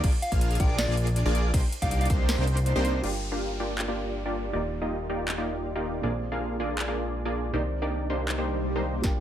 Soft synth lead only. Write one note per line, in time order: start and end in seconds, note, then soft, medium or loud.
0.22 0.32 F5 medium
0.60 0.77 G5 loud
0.79 0.85 D5 medium
0.88 0.94 D5 medium
1.82 1.88 F5 loud
1.91 1.97 F5 medium
2.01 2.07 F5 loud
2.10 2.16 F5 medium